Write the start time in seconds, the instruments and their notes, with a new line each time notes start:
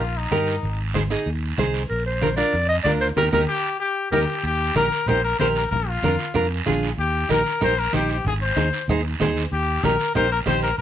0.00 fingered electric bass A#1, trumpet F4, high conga, long guiro
0.17 trumpet D#4
0.31 fingered electric bass G2, nylon-string guitar D#4 G4 A#4, high conga, short guiro
0.47 short guiro
0.63 fingered electric bass G#1, high conga, long guiro
0.94 nylon-string guitar D#4 G#4 C5, high conga, short guiro
1.10 nylon-string guitar D#4 G#4 D#5, short guiro
1.26 fingered electric bass D#2, high conga, long guiro
1.58 fingered electric bass C2, nylon-string guitar D#4 G#4 C5, high conga, short guiro
1.74 short guiro
1.90 fingered electric bass A#1, clarinet A#4, high conga, long guiro
2.06 clarinet C5
2.21 nylon-string guitar D4 F4 A#4, high conga, short guiro
2.36 nylon-string guitar D4 F4 A#4, clarinet D5, short guiro
2.53 fingered electric bass F2, high conga, long guiro
2.68 clarinet D#5
2.84 fingered electric bass D2, nylon-string guitar D4 F4 A#4, clarinet D5, high conga, short guiro
3.01 clarinet C5, short guiro
3.17 fingered electric bass D#2, nylon-string guitar D#4 G4 A#4, clarinet A#4, high conga, long guiro
3.32 fingered electric bass D#2, nylon-string guitar D#4 G4 A#4, clarinet A#4, high conga, long guiro
3.48 trumpet G4
3.80 trumpet G4
4.12 fingered electric bass D#2, nylon-string guitar D#4 G4 A#4, trumpet G4, clarinet A#4, high conga, long guiro
4.43 fingered electric bass D#2, trumpet G4, high conga, long guiro
4.75 fingered electric bass A#1, nylon-string guitar D#4 G4 A#4, trumpet A#4, high conga, short guiro
4.92 short guiro
5.06 fingered electric bass A#1, nylon-string guitar D#4 G4 A#4, trumpet C5, high conga, low conga, long guiro
5.24 trumpet A#4
5.39 fingered electric bass A#1, nylon-string guitar D#4 G4 A#4, trumpet C5, high conga, short guiro
5.55 trumpet A#4, short guiro
5.71 fingered electric bass A#1, trumpet A#4, high conga, low conga, long guiro
5.88 trumpet F4
6.03 fingered electric bass F2, nylon-string guitar D4 F4 A#4, high conga, short guiro
6.19 short guiro
6.34 fingered electric bass F2, nylon-string guitar D4 F4 A#4, high conga, low conga, long guiro
6.66 fingered electric bass A#1, nylon-string guitar D4 F4 G#4, high conga, short guiro
6.83 short guiro
6.98 fingered electric bass D#2, trumpet G4, high conga, long guiro
7.29 fingered electric bass A#1, nylon-string guitar D#4 G4 A#4, trumpet A#4, high conga, short guiro
7.46 short guiro
7.61 fingered electric bass A#1, nylon-string guitar D#4 G4 A#4, trumpet C5, high conga, low conga, long guiro
7.79 trumpet A#4
7.93 fingered electric bass A#1, nylon-string guitar D#4 G4 C5, trumpet G4, high conga, short guiro
8.09 trumpet G4, short guiro
8.25 fingered electric bass G#1, trumpet G#4, high conga, low conga, long guiro
8.42 trumpet C5
8.56 fingered electric bass D#2, nylon-string guitar D#4 G#4 C5, high conga, short guiro
8.73 short guiro
8.88 fingered electric bass D#2, nylon-string guitar D#4 G#4 C5, high conga, low conga, long guiro
9.20 fingered electric bass D#2, nylon-string guitar D#4 G#4 C5, high conga, low conga, short guiro
9.37 short guiro
9.52 fingered electric bass D#2, trumpet G4, high conga, long guiro
9.83 fingered electric bass A#1, nylon-string guitar D#4 G4 A#4, trumpet A#4, high conga, short guiro
10.00 short guiro
10.15 fingered electric bass A#1, nylon-string guitar D#4 G4 A#4, trumpet C5, high conga, low conga, long guiro
10.32 trumpet A#4
10.46 fingered electric bass A#1, nylon-string guitar D#4 G4 C5, trumpet C5, high conga, short guiro
10.63 trumpet A#4, short guiro
10.78 fingered electric bass A#1